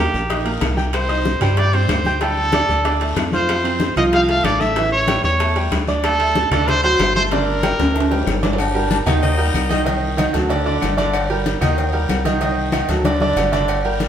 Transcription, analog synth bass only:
0.14 0.59 A#1 loud
0.62 1.36 C2 medium
1.42 1.86 G2 loud
1.89 2.64 D2 medium
2.69 3.14 D2 medium
3.16 3.91 F2 medium
3.97 4.41 C2 loud
4.44 5.19 A1 medium
5.24 5.69 E2 loud
5.72 6.46 D2 medium
6.51 6.96 D2 loud
6.99 7.74 G1 loud
7.79 8.24 D2 loud
8.27 9.01 G1 medium
9.06 9.51 D#2 loud
9.54 10.28 C2 medium
10.35 10.79 D2 loud
10.83 11.56 G1 medium
11.62 12.06 D#2 loud
12.10 12.84 C2 medium
12.89 13.34 D2 loud
13.36 14.08 G1 medium

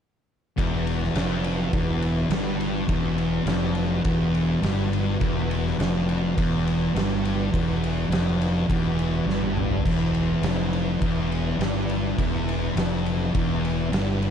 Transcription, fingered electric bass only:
0.58 1.11 E1 loud
1.13 1.68 F1 medium
1.73 2.27 E1 loud
2.29 2.84 G1 loud
2.89 3.43 E1 medium
3.45 4.00 F1 medium
4.05 4.59 E1 loud
4.62 5.16 G1 loud
5.21 5.75 E1 medium
5.78 6.32 F1 medium
6.38 6.91 E1 medium
6.94 7.48 G1 medium
7.53 8.07 E1 medium
8.09 8.64 F1 medium
8.70 9.23 E1 loud
9.26 9.80 G1 loud
9.86 10.39 E1 medium
10.41 10.96 F1 medium
11.02 11.56 E1 medium
11.58 12.13 G1 loud
12.18 12.72 E1 medium
12.75 13.30 F1 medium
13.35 13.89 E1 medium
13.92 14.30 G1 loud

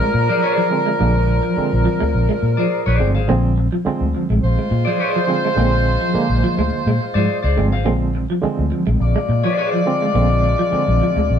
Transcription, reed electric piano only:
0.71 0.91 D3 medium
0.71 0.91 F3 medium
0.71 0.91 G#3 medium
0.71 0.91 C4 medium
0.99 1.38 D3 medium
0.99 1.38 F3 medium
0.99 1.38 G#3 medium
0.99 1.38 D4 medium
1.57 2.33 D3 medium
1.57 2.33 F3 medium
1.57 2.33 G#3 medium
1.57 2.33 C4 medium
2.99 3.19 D3 medium
2.99 3.19 F3 medium
2.99 3.19 G#3 medium
2.99 3.20 C4 medium
3.28 3.66 D3 medium
3.28 3.67 F3 medium
3.28 3.67 G#3 medium
3.28 3.67 C4 loud
3.85 4.61 D3 medium
3.85 4.62 F3 medium
3.85 4.62 G#3 medium
3.85 4.62 C4 medium
5.27 5.47 D3 medium
5.27 5.48 F3 medium
5.27 5.48 G#3 medium
5.27 5.48 C4 medium
5.56 5.95 D3 medium
5.56 5.95 F3 medium
5.56 5.95 G#3 medium
5.56 5.96 C4 medium
6.13 6.90 D3 medium
6.13 6.90 F3 medium
6.13 6.90 G#3 medium
6.13 6.90 A#3 loud
7.56 7.76 D3 medium
7.56 7.77 F3 medium
7.56 7.77 G#3 medium
7.56 7.77 C4 medium
7.85 8.23 D3 medium
7.85 8.24 F3 medium
7.85 8.24 G#3 medium
7.85 8.24 C4 medium
8.42 9.18 D3 medium
8.42 9.19 F3 medium
8.42 9.19 G#3 medium
8.42 9.19 C4 medium
9.85 10.05 D3 medium
9.85 10.05 F3 medium
9.85 10.06 G#3 medium
9.85 10.06 C4 medium
10.14 10.53 D3 medium
10.14 10.53 F3 medium
10.14 10.53 G#3 medium
10.14 10.53 C4 medium
10.71 11.39 D3 medium
10.71 11.39 F3 medium
10.71 11.39 G#3 medium
10.71 11.39 C4 medium

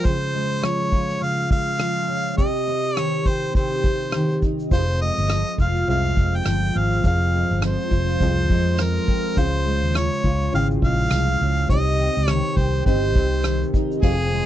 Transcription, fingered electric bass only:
4.71 5.10 F1 medium
5.18 5.42 G1 medium
5.58 5.82 F1 medium
5.88 6.12 C2 medium
6.17 6.41 F1 medium
6.46 6.70 G1 medium
6.76 6.99 G#1 medium
7.04 7.42 F1 medium
7.51 7.75 G1 medium
7.91 8.15 F1 medium
8.20 8.50 C2 medium
8.50 8.97 F2 medium
9.37 9.83 C#2 medium
9.83 10.07 D#2 medium
10.24 10.48 C#2 medium
10.54 10.77 G#1 medium
10.82 11.06 A#1 medium
11.11 11.35 C2 medium
11.41 11.65 C#2 medium
11.69 12.08 C2 loud
12.17 12.41 C#2 medium
12.57 12.81 C2 medium
12.86 13.15 G1 medium
13.15 13.63 C2 medium
14.03 14.41 F1 medium

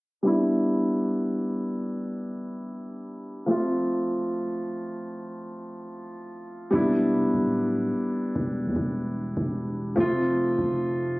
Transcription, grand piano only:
0.23 3.44 G3 medium
0.23 3.45 B3 medium
0.23 3.46 D4 medium
0.27 3.46 E4 medium
3.46 6.68 F3 medium
3.46 6.69 A3 medium
3.46 6.70 C4 medium
3.51 6.70 F4 medium
6.71 9.92 G3 medium
6.71 9.93 B3 medium
6.71 9.94 D4 medium
6.75 9.95 E4 medium
9.96 11.20 F3 medium
9.96 11.20 A3 medium
9.96 11.20 C4 medium
10.00 11.20 F4 medium

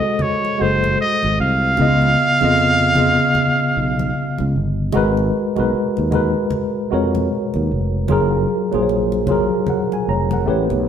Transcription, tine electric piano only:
0.00 0.58 G#3 loud
0.00 0.60 F#4 medium
0.00 0.61 A4 medium
0.00 0.62 C5 loud
0.00 1.79 D#5 medium
0.58 1.71 G#3 medium
0.58 1.72 F#4 medium
0.58 1.73 A4 medium
0.62 1.74 C5 medium
1.77 2.37 C#3 medium
1.77 2.37 B3 medium
1.77 1.87 E4 medium
1.77 2.39 D#5 loud
1.87 2.41 F4 medium
2.40 2.93 C#3 medium
2.40 2.94 B3 medium
2.40 2.94 F4 medium
2.45 2.95 D#5 medium
2.96 4.47 C#3 medium
2.96 4.47 B3 medium
2.96 4.48 F4 medium
2.96 4.48 D#5 medium
4.93 5.52 G#3 loud
4.93 5.53 F#4 medium
4.93 5.54 A#4 medium
4.97 5.54 B4 loud
5.56 6.08 G#3 medium
5.56 6.09 F#4 medium
5.56 6.10 A#4 medium
5.60 6.10 B4 medium
6.11 6.87 G#3 medium
6.11 6.87 F#4 medium
6.11 6.88 A#4 medium
6.15 6.89 B4 medium
6.90 8.03 G#3 medium
6.90 8.04 F#4 medium
6.90 8.05 A#4 medium
6.94 8.05 C#5 medium
8.08 8.68 F#3 medium
8.08 8.68 F4 medium
8.08 8.69 G#4 medium
8.12 8.70 A#4 loud
8.72 9.25 F#3 medium
8.72 9.25 F4 medium
8.72 9.26 G#4 medium
8.76 8.79 C5 medium
8.83 9.30 C#5 medium
9.27 10.46 F#3 medium
9.27 10.46 F4 medium
9.27 10.47 G#4 medium
9.31 9.69 A#4 medium
9.69 9.91 A#4 soft
9.69 9.91 F#5 medium
9.93 10.07 G#5 medium
10.09 10.31 C#5 medium
10.09 10.30 A#5 medium
10.33 10.69 A#4 soft
10.33 10.69 F#5 medium
10.46 10.89 A3 medium
10.46 10.89 G4 medium
10.46 10.89 B4 medium
10.46 10.89 C#5 medium

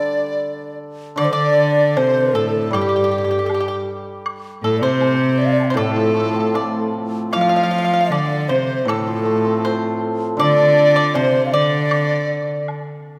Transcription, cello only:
1.19 1.32 D3 medium
1.34 1.98 D3 medium
1.96 2.36 C3 medium
2.34 2.73 A2 medium
2.72 3.87 G2 medium
4.62 4.83 A2 medium
4.81 5.79 C3 medium
5.77 6.94 A2 medium
7.34 8.12 F3 medium
8.11 8.51 D3 medium
8.49 8.89 C3 medium
8.88 10.02 A2 medium
10.40 11.17 D3 medium
11.15 11.55 C3 medium
11.53 12.69 D3 medium

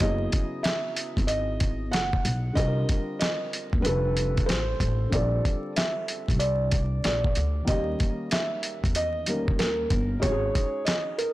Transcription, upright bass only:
0.01 0.26 F#1 loud
1.17 1.93 G#1 medium
1.93 2.18 F#1 medium
2.25 2.50 B1 medium
2.57 2.82 C2 medium
3.73 3.82 D#2 medium
3.84 4.34 F1 medium
4.48 4.73 A1 medium
4.80 5.05 A1 medium
5.13 5.37 A#1 medium
6.29 7.00 C2 medium
7.04 7.29 A#1 medium
7.37 7.61 D2 loud
7.68 7.93 D#2 loud
8.84 9.55 E2 medium
9.60 9.84 D#2 medium
9.91 10.16 G1 medium
10.23 10.48 G#1 loud

